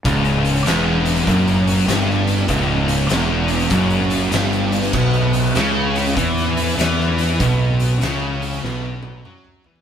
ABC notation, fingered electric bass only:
X:1
M:4/4
L:1/8
Q:"Swing" 1/4=98
K:B
V:1 name="Fingered electric bass" clef=bass
C,,,2 E,,,2 F,,,2 =G,,,2 | C,,,2 E,,,2 F,,,2 =G,,,2 | B,,,2 C,,2 E,,2 E,,2 | B,,,2 C,,2 B,,,2 F,, E,, |]